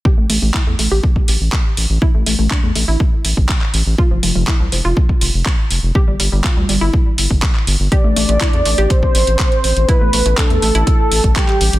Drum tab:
HH |--o---o---o---o-|--o---o---o---o-|--o---o---o---o-|--o---o---o---o-|
CP |----x-------x---|----x-------xx--|----x-------x---|----x-------xx--|
BD |o---o---oo--o---|o---o---o--oo---|o---o---oo--o---|o---o---o--oo---|

HH |x-oxxxoxx-oxxxox|x-oxxxoxx-oxxxox|
CP |----x-------x---|----x-------xx--|
BD |o---o---oo--o---|o---o---o--oo---|